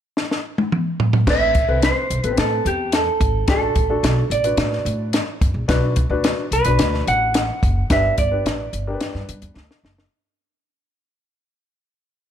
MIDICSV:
0, 0, Header, 1, 5, 480
1, 0, Start_track
1, 0, Tempo, 552995
1, 1102, Time_signature, 4, 2, 24, 8
1, 10681, End_track
2, 0, Start_track
2, 0, Title_t, "Clean electric guitar"
2, 0, Program_c, 0, 27
2, 1131, Note_on_c, 0, 76, 98
2, 1598, Note_off_c, 0, 76, 0
2, 1601, Note_on_c, 0, 72, 83
2, 1957, Note_off_c, 0, 72, 0
2, 1957, Note_on_c, 0, 71, 83
2, 2075, Note_off_c, 0, 71, 0
2, 2079, Note_on_c, 0, 69, 84
2, 2317, Note_off_c, 0, 69, 0
2, 2320, Note_on_c, 0, 67, 83
2, 2556, Note_on_c, 0, 69, 83
2, 2558, Note_off_c, 0, 67, 0
2, 3025, Note_off_c, 0, 69, 0
2, 3035, Note_on_c, 0, 69, 85
2, 3746, Note_off_c, 0, 69, 0
2, 3750, Note_on_c, 0, 74, 79
2, 4669, Note_off_c, 0, 74, 0
2, 5668, Note_on_c, 0, 71, 89
2, 6145, Note_off_c, 0, 71, 0
2, 6148, Note_on_c, 0, 78, 97
2, 6827, Note_off_c, 0, 78, 0
2, 6876, Note_on_c, 0, 76, 89
2, 7103, Note_off_c, 0, 76, 0
2, 7106, Note_on_c, 0, 74, 84
2, 7787, Note_off_c, 0, 74, 0
2, 10681, End_track
3, 0, Start_track
3, 0, Title_t, "Upright piano"
3, 0, Program_c, 1, 0
3, 1100, Note_on_c, 1, 60, 65
3, 1101, Note_on_c, 1, 69, 58
3, 1106, Note_on_c, 1, 71, 77
3, 1310, Note_off_c, 1, 60, 0
3, 1310, Note_off_c, 1, 69, 0
3, 1313, Note_off_c, 1, 71, 0
3, 1462, Note_on_c, 1, 69, 54
3, 1463, Note_on_c, 1, 71, 78
3, 1464, Note_on_c, 1, 60, 61
3, 1740, Note_off_c, 1, 69, 0
3, 1740, Note_off_c, 1, 71, 0
3, 1741, Note_off_c, 1, 60, 0
3, 1945, Note_on_c, 1, 69, 57
3, 1947, Note_on_c, 1, 71, 66
3, 1950, Note_on_c, 1, 59, 47
3, 2002, Note_off_c, 1, 59, 0
3, 2002, Note_on_c, 1, 60, 67
3, 2498, Note_off_c, 1, 69, 0
3, 2499, Note_off_c, 1, 71, 0
3, 2527, Note_off_c, 1, 60, 0
3, 3023, Note_on_c, 1, 62, 68
3, 3023, Note_on_c, 1, 69, 76
3, 3025, Note_on_c, 1, 66, 57
3, 3230, Note_off_c, 1, 62, 0
3, 3230, Note_off_c, 1, 69, 0
3, 3231, Note_off_c, 1, 66, 0
3, 3381, Note_on_c, 1, 62, 66
3, 3385, Note_on_c, 1, 66, 58
3, 3387, Note_on_c, 1, 69, 78
3, 3658, Note_off_c, 1, 62, 0
3, 3660, Note_off_c, 1, 66, 0
3, 3661, Note_off_c, 1, 69, 0
3, 3856, Note_on_c, 1, 62, 64
3, 3856, Note_on_c, 1, 66, 55
3, 3858, Note_on_c, 1, 71, 68
3, 4412, Note_off_c, 1, 62, 0
3, 4412, Note_off_c, 1, 66, 0
3, 4413, Note_off_c, 1, 71, 0
3, 4931, Note_on_c, 1, 62, 80
3, 4933, Note_on_c, 1, 71, 93
3, 4935, Note_on_c, 1, 66, 71
3, 5142, Note_off_c, 1, 62, 0
3, 5143, Note_off_c, 1, 71, 0
3, 5144, Note_off_c, 1, 66, 0
3, 5299, Note_on_c, 1, 62, 85
3, 5299, Note_on_c, 1, 71, 82
3, 5301, Note_on_c, 1, 66, 67
3, 5575, Note_off_c, 1, 62, 0
3, 5575, Note_off_c, 1, 71, 0
3, 5576, Note_off_c, 1, 66, 0
3, 5778, Note_on_c, 1, 71, 71
3, 5779, Note_on_c, 1, 62, 66
3, 5780, Note_on_c, 1, 66, 55
3, 6332, Note_off_c, 1, 62, 0
3, 6332, Note_off_c, 1, 71, 0
3, 6333, Note_off_c, 1, 66, 0
3, 6861, Note_on_c, 1, 62, 72
3, 6861, Note_on_c, 1, 71, 70
3, 6862, Note_on_c, 1, 67, 62
3, 7067, Note_off_c, 1, 62, 0
3, 7067, Note_off_c, 1, 67, 0
3, 7067, Note_off_c, 1, 71, 0
3, 7215, Note_on_c, 1, 71, 71
3, 7218, Note_on_c, 1, 62, 70
3, 7219, Note_on_c, 1, 67, 56
3, 7493, Note_off_c, 1, 71, 0
3, 7494, Note_off_c, 1, 62, 0
3, 7495, Note_off_c, 1, 67, 0
3, 7703, Note_on_c, 1, 62, 77
3, 7703, Note_on_c, 1, 67, 69
3, 7704, Note_on_c, 1, 70, 64
3, 7756, Note_off_c, 1, 70, 0
3, 7757, Note_on_c, 1, 71, 74
3, 8255, Note_off_c, 1, 62, 0
3, 8255, Note_off_c, 1, 67, 0
3, 8282, Note_off_c, 1, 71, 0
3, 10681, End_track
4, 0, Start_track
4, 0, Title_t, "Upright bass"
4, 0, Program_c, 2, 32
4, 1101, Note_on_c, 2, 33, 95
4, 1375, Note_off_c, 2, 33, 0
4, 1463, Note_on_c, 2, 36, 81
4, 1645, Note_off_c, 2, 36, 0
4, 1826, Note_on_c, 2, 35, 70
4, 1916, Note_off_c, 2, 35, 0
4, 1944, Note_on_c, 2, 33, 80
4, 2034, Note_off_c, 2, 33, 0
4, 2061, Note_on_c, 2, 45, 99
4, 2244, Note_off_c, 2, 45, 0
4, 2302, Note_on_c, 2, 40, 86
4, 2666, Note_off_c, 2, 40, 0
4, 2780, Note_on_c, 2, 32, 90
4, 2963, Note_off_c, 2, 32, 0
4, 3018, Note_on_c, 2, 33, 102
4, 3201, Note_off_c, 2, 33, 0
4, 3261, Note_on_c, 2, 33, 86
4, 3443, Note_off_c, 2, 33, 0
4, 3498, Note_on_c, 2, 35, 86
4, 3681, Note_off_c, 2, 35, 0
4, 3733, Note_on_c, 2, 33, 80
4, 3918, Note_off_c, 2, 33, 0
4, 3970, Note_on_c, 2, 45, 91
4, 4155, Note_off_c, 2, 45, 0
4, 4211, Note_on_c, 2, 45, 89
4, 4487, Note_off_c, 2, 45, 0
4, 4699, Note_on_c, 2, 42, 84
4, 4790, Note_off_c, 2, 42, 0
4, 4810, Note_on_c, 2, 34, 80
4, 4904, Note_off_c, 2, 34, 0
4, 4937, Note_on_c, 2, 35, 94
4, 5211, Note_off_c, 2, 35, 0
4, 5290, Note_on_c, 2, 38, 80
4, 5475, Note_off_c, 2, 38, 0
4, 5653, Note_on_c, 2, 36, 71
4, 5746, Note_off_c, 2, 36, 0
4, 5775, Note_on_c, 2, 35, 85
4, 5867, Note_off_c, 2, 35, 0
4, 5897, Note_on_c, 2, 38, 93
4, 6079, Note_off_c, 2, 38, 0
4, 6139, Note_on_c, 2, 33, 92
4, 6502, Note_off_c, 2, 33, 0
4, 6620, Note_on_c, 2, 30, 83
4, 6801, Note_off_c, 2, 30, 0
4, 6856, Note_on_c, 2, 31, 92
4, 7038, Note_off_c, 2, 31, 0
4, 7100, Note_on_c, 2, 31, 92
4, 7281, Note_off_c, 2, 31, 0
4, 7337, Note_on_c, 2, 33, 73
4, 7519, Note_off_c, 2, 33, 0
4, 7576, Note_on_c, 2, 31, 78
4, 7759, Note_off_c, 2, 31, 0
4, 7938, Note_on_c, 2, 43, 73
4, 8029, Note_off_c, 2, 43, 0
4, 8060, Note_on_c, 2, 43, 80
4, 8150, Note_off_c, 2, 43, 0
4, 8178, Note_on_c, 2, 40, 69
4, 8269, Note_off_c, 2, 40, 0
4, 8295, Note_on_c, 2, 38, 82
4, 8387, Note_off_c, 2, 38, 0
4, 8537, Note_on_c, 2, 30, 78
4, 8720, Note_off_c, 2, 30, 0
4, 10681, End_track
5, 0, Start_track
5, 0, Title_t, "Drums"
5, 147, Note_on_c, 9, 38, 57
5, 234, Note_off_c, 9, 38, 0
5, 273, Note_on_c, 9, 38, 52
5, 360, Note_off_c, 9, 38, 0
5, 506, Note_on_c, 9, 48, 60
5, 593, Note_off_c, 9, 48, 0
5, 628, Note_on_c, 9, 47, 75
5, 715, Note_off_c, 9, 47, 0
5, 866, Note_on_c, 9, 43, 83
5, 953, Note_off_c, 9, 43, 0
5, 983, Note_on_c, 9, 43, 93
5, 1070, Note_off_c, 9, 43, 0
5, 1103, Note_on_c, 9, 36, 92
5, 1104, Note_on_c, 9, 49, 82
5, 1109, Note_on_c, 9, 38, 103
5, 1190, Note_off_c, 9, 36, 0
5, 1191, Note_off_c, 9, 49, 0
5, 1195, Note_off_c, 9, 38, 0
5, 1343, Note_on_c, 9, 42, 60
5, 1346, Note_on_c, 9, 36, 79
5, 1430, Note_off_c, 9, 42, 0
5, 1433, Note_off_c, 9, 36, 0
5, 1584, Note_on_c, 9, 42, 79
5, 1590, Note_on_c, 9, 38, 103
5, 1670, Note_off_c, 9, 42, 0
5, 1677, Note_off_c, 9, 38, 0
5, 1827, Note_on_c, 9, 42, 69
5, 1914, Note_off_c, 9, 42, 0
5, 1941, Note_on_c, 9, 42, 53
5, 2028, Note_off_c, 9, 42, 0
5, 2061, Note_on_c, 9, 42, 82
5, 2067, Note_on_c, 9, 38, 104
5, 2148, Note_off_c, 9, 42, 0
5, 2154, Note_off_c, 9, 38, 0
5, 2308, Note_on_c, 9, 42, 69
5, 2395, Note_off_c, 9, 42, 0
5, 2538, Note_on_c, 9, 42, 91
5, 2546, Note_on_c, 9, 38, 89
5, 2625, Note_off_c, 9, 42, 0
5, 2632, Note_off_c, 9, 38, 0
5, 2784, Note_on_c, 9, 36, 76
5, 2786, Note_on_c, 9, 42, 71
5, 2870, Note_off_c, 9, 36, 0
5, 2873, Note_off_c, 9, 42, 0
5, 3018, Note_on_c, 9, 42, 82
5, 3020, Note_on_c, 9, 36, 98
5, 3023, Note_on_c, 9, 38, 112
5, 3104, Note_off_c, 9, 42, 0
5, 3107, Note_off_c, 9, 36, 0
5, 3109, Note_off_c, 9, 38, 0
5, 3259, Note_on_c, 9, 42, 64
5, 3263, Note_on_c, 9, 36, 80
5, 3346, Note_off_c, 9, 42, 0
5, 3349, Note_off_c, 9, 36, 0
5, 3504, Note_on_c, 9, 42, 78
5, 3511, Note_on_c, 9, 38, 100
5, 3591, Note_off_c, 9, 42, 0
5, 3598, Note_off_c, 9, 38, 0
5, 3743, Note_on_c, 9, 42, 74
5, 3830, Note_off_c, 9, 42, 0
5, 3854, Note_on_c, 9, 42, 59
5, 3941, Note_off_c, 9, 42, 0
5, 3970, Note_on_c, 9, 42, 74
5, 3976, Note_on_c, 9, 38, 108
5, 4057, Note_off_c, 9, 42, 0
5, 4063, Note_off_c, 9, 38, 0
5, 4102, Note_on_c, 9, 38, 33
5, 4189, Note_off_c, 9, 38, 0
5, 4220, Note_on_c, 9, 42, 70
5, 4307, Note_off_c, 9, 42, 0
5, 4454, Note_on_c, 9, 42, 89
5, 4462, Note_on_c, 9, 38, 94
5, 4541, Note_off_c, 9, 42, 0
5, 4549, Note_off_c, 9, 38, 0
5, 4700, Note_on_c, 9, 36, 81
5, 4700, Note_on_c, 9, 42, 63
5, 4787, Note_off_c, 9, 36, 0
5, 4787, Note_off_c, 9, 42, 0
5, 4937, Note_on_c, 9, 42, 89
5, 4938, Note_on_c, 9, 36, 109
5, 4942, Note_on_c, 9, 38, 110
5, 5023, Note_off_c, 9, 42, 0
5, 5025, Note_off_c, 9, 36, 0
5, 5028, Note_off_c, 9, 38, 0
5, 5174, Note_on_c, 9, 42, 70
5, 5180, Note_on_c, 9, 36, 74
5, 5260, Note_off_c, 9, 42, 0
5, 5267, Note_off_c, 9, 36, 0
5, 5416, Note_on_c, 9, 42, 82
5, 5422, Note_on_c, 9, 38, 104
5, 5502, Note_off_c, 9, 42, 0
5, 5509, Note_off_c, 9, 38, 0
5, 5659, Note_on_c, 9, 42, 69
5, 5745, Note_off_c, 9, 42, 0
5, 5768, Note_on_c, 9, 42, 55
5, 5855, Note_off_c, 9, 42, 0
5, 5892, Note_on_c, 9, 42, 88
5, 5898, Note_on_c, 9, 38, 99
5, 5979, Note_off_c, 9, 42, 0
5, 5984, Note_off_c, 9, 38, 0
5, 6024, Note_on_c, 9, 38, 36
5, 6111, Note_off_c, 9, 38, 0
5, 6141, Note_on_c, 9, 42, 71
5, 6228, Note_off_c, 9, 42, 0
5, 6373, Note_on_c, 9, 42, 96
5, 6381, Note_on_c, 9, 38, 102
5, 6460, Note_off_c, 9, 42, 0
5, 6468, Note_off_c, 9, 38, 0
5, 6621, Note_on_c, 9, 36, 77
5, 6624, Note_on_c, 9, 42, 70
5, 6708, Note_off_c, 9, 36, 0
5, 6711, Note_off_c, 9, 42, 0
5, 6858, Note_on_c, 9, 42, 84
5, 6859, Note_on_c, 9, 36, 105
5, 6862, Note_on_c, 9, 38, 107
5, 6944, Note_off_c, 9, 42, 0
5, 6946, Note_off_c, 9, 36, 0
5, 6949, Note_off_c, 9, 38, 0
5, 7097, Note_on_c, 9, 42, 68
5, 7101, Note_on_c, 9, 36, 85
5, 7184, Note_off_c, 9, 42, 0
5, 7188, Note_off_c, 9, 36, 0
5, 7342, Note_on_c, 9, 42, 84
5, 7349, Note_on_c, 9, 38, 97
5, 7429, Note_off_c, 9, 42, 0
5, 7436, Note_off_c, 9, 38, 0
5, 7579, Note_on_c, 9, 42, 68
5, 7665, Note_off_c, 9, 42, 0
5, 7817, Note_on_c, 9, 42, 80
5, 7822, Note_on_c, 9, 38, 96
5, 7903, Note_off_c, 9, 42, 0
5, 7909, Note_off_c, 9, 38, 0
5, 7945, Note_on_c, 9, 38, 32
5, 8032, Note_off_c, 9, 38, 0
5, 8061, Note_on_c, 9, 42, 75
5, 8148, Note_off_c, 9, 42, 0
5, 8176, Note_on_c, 9, 42, 57
5, 8262, Note_off_c, 9, 42, 0
5, 8307, Note_on_c, 9, 38, 47
5, 8394, Note_off_c, 9, 38, 0
5, 8426, Note_on_c, 9, 38, 54
5, 8513, Note_off_c, 9, 38, 0
5, 8546, Note_on_c, 9, 38, 74
5, 8633, Note_off_c, 9, 38, 0
5, 8667, Note_on_c, 9, 38, 79
5, 8753, Note_off_c, 9, 38, 0
5, 10681, End_track
0, 0, End_of_file